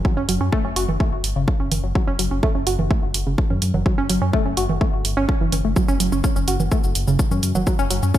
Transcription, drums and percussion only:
0.05 kick
0.29 open hi-hat
0.53 kick
0.76 open hi-hat
0.89 low conga
1.00 kick
1.24 open hi-hat
1.48 kick
1.72 open hi-hat, low conga
1.95 kick
2.19 open hi-hat
2.43 kick
2.67 open hi-hat
2.79 low conga
2.91 kick
3.14 open hi-hat
3.38 kick
3.50 low conga
3.62 open hi-hat
3.74 low conga
3.86 kick
4.10 open hi-hat
4.33 kick
4.57 open hi-hat
4.69 low conga
4.81 kick
5.05 open hi-hat
5.29 kick
5.52 open hi-hat, low conga
5.76 kick, shaker
5.88 shaker
6.00 open hi-hat, shaker
6.12 shaker
6.24 kick, shaker
6.36 shaker
6.48 open hi-hat, shaker
6.60 low conga, shaker
6.71 kick, shaker
6.84 shaker
6.95 open hi-hat, shaker
7.07 shaker
7.19 kick, shaker
7.31 low conga, shaker
7.43 open hi-hat, shaker
7.55 low conga, shaker
7.67 kick, shaker
7.79 shaker
7.91 open hi-hat, shaker
8.03 shaker
8.14 kick, shaker

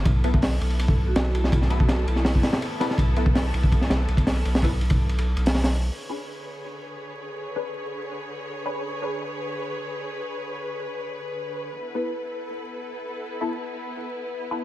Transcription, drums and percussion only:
0.05 kick, ride
0.24 ride
0.34 kick
0.42 snare, open hi-hat
0.61 ride
0.70 ride
0.79 ride
0.88 kick
1.16 snare, ride
1.35 ride
1.44 snare
1.52 kick, ride
1.62 snare
1.70 ride
1.80 kick
1.89 snare, ride
2.08 ride
2.16 snare
2.25 snare, open hi-hat
2.35 kick
2.43 snare, open hi-hat
2.53 snare
2.62 ride
2.81 snare, ride
2.91 snare
2.98 kick, ride
3.16 ride
3.26 kick
3.35 snare, open hi-hat
3.54 ride
3.63 kick
3.72 kick, ride
3.81 snare
3.90 snare, ride
4.08 ride
4.17 kick, ride
4.27 snare, open hi-hat
4.45 ride
4.55 snare, open hi-hat
4.62 kick, ride
4.81 ride
4.90 kick, ride
5.09 ride
5.18 ride
5.37 ride
5.46 snare, open hi-hat
5.54 snare, open hi-hat
5.64 snare, open hi-hat

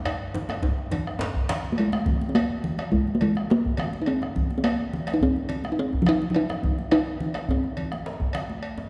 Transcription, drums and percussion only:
0.05 bombo rim, cowbell, djembe tone
0.21 bombo rim
0.34 djembe slap, djembe tone, high conga, low conga
0.49 bombo rim, cowbell, djembe slap, djembe tone, high conga
0.62 bombo rim, bombo low, djembe slap, djembe tone, high conga, djembe bass
0.77 bombo rim, djembe slap, high conga
0.91 cowbell, djembe tone, high conga, low conga
1.06 bombo rim, djembe slap
1.19 djembe slap, djembe tone
1.21 djembe slap
1.34 bombo rim, bombo low, djembe slap, djembe bass
1.48 bombo rim, cowbell, djembe slap, low conga
1.65 low conga
1.77 cowbell, djembe slap, high conga
1.92 bombo rim, djembe slap, djembe tone, high conga
2.06 bombo low, djembe bass, low conga
2.21 bombo rim, djembe slap, high conga
2.35 bombo rim, cowbell, djembe slap
2.49 djembe tone
2.64 low conga
2.78 bombo rim, cowbell, djembe slap, high conga
2.92 bombo rim, bombo low, djembe bass
3.07 djembe tone, high conga
3.21 cowbell, low conga
3.35 bombo rim, high conga
3.50 djembe slap
3.65 bombo low, djembe tone, djembe bass
3.77 bombo rim, cowbell, high conga, low conga
3.93 high conga
4.06 cowbell
4.22 bombo rim, djembe slap, djembe tone
4.36 bombo low, low conga, djembe bass
4.51 bombo rim, djembe slap, high conga
4.64 bombo rim, cowbell, djembe slap
4.79 djembe tone
4.93 low conga
5.07 bombo rim, cowbell, djembe slap, high conga
5.21 bombo rim, bombo low, djembe bass
5.36 high conga, djembe tone
5.49 cowbell, low conga
5.64 bombo rim, high conga
5.93 bombo low, djembe tone, djembe bass
6.06 bombo rim, cowbell, high conga, low conga
6.22 high conga
6.34 cowbell
6.49 bombo rim, djembe slap, djembe tone
6.63 bombo low, djembe bass, low conga
6.78 bombo rim, djembe slap, high conga
6.91 bombo rim, cowbell, djembe slap
7.07 djembe tone
7.20 low conga
7.34 bombo rim, cowbell, djembe slap, high conga
7.49 bombo rim, bombo low, djembe bass
7.64 djembe tone, high conga
7.77 cowbell, low conga
7.92 bombo rim, high conga
8.06 djembe slap
8.20 bombo low, djembe tone, djembe bass
8.33 bombo rim, cowbell, high conga, low conga
8.50 high conga
8.63 cowbell
8.78 djembe slap, djembe tone

